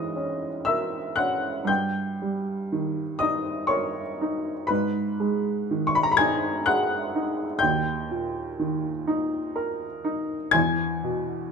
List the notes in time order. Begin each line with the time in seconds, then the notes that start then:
Already playing: G#2 E3 G#3 C#5 D#5 C#6 D#6
0.16 C#4
0.65 A#4 E5 E6
1.16 C#4 F#5 F#6
1.65 G2 G6
1.69 G5
2.22 G3
2.72 D#3
3.19 D#4 D#5 D#6
3.67 A#4 C#5 C#6
4.21 D#4
4.67 G#2 B4 B5
5.20 G#3
5.71 D#3
5.87 C#6
5.95 B5
6.03 A#5
6.12 B5
6.17 D#4 G#5 G#6
6.66 G#4 F#5 F#6
7.15 D#4
7.59 D#2 G5 G6
8.11 A#2
8.60 D#3
9.07 D#4
9.56 A#4
10.05 D#4
10.51 E2 G#5 G#6
11.04 B2